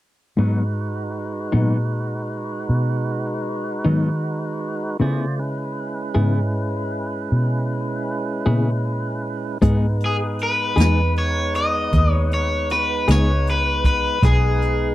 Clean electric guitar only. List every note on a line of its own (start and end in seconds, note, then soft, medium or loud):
0.37 0.61 G#2 medium
0.37 0.62 F#3 medium
0.37 0.62 B3 medium
0.37 0.62 D#4 medium
1.52 1.77 G#2 soft
1.52 1.77 F#3 soft
1.52 1.77 B3 medium
1.52 1.77 D#4 medium
3.85 4.09 G#2 soft
3.85 4.09 F#3 medium
3.85 4.09 B3 medium
3.85 4.08 D#4 medium
5.00 5.23 C#3 medium
5.00 5.24 B3 medium
5.00 5.24 E4 medium
5.00 5.25 G#4 medium
6.15 6.39 C#3 medium
6.15 6.39 B3 medium
6.15 6.39 E4 medium
6.15 6.39 G#4 medium
8.46 8.70 C#3 soft
8.46 8.70 B3 medium
8.46 8.70 E4 medium
8.46 8.69 G#4 medium
9.62 9.85 G#3 medium
9.62 9.85 B3 medium
9.62 9.85 D#4 medium
9.62 9.86 G#4 medium
10.76 11.01 G#3 soft
10.76 11.00 B3 medium
10.76 11.00 D#4 medium
10.76 11.00 G#4 medium
13.08 13.31 G#3 medium
13.08 13.31 B3 soft
13.08 13.31 D#4 medium
13.08 13.31 G#4 medium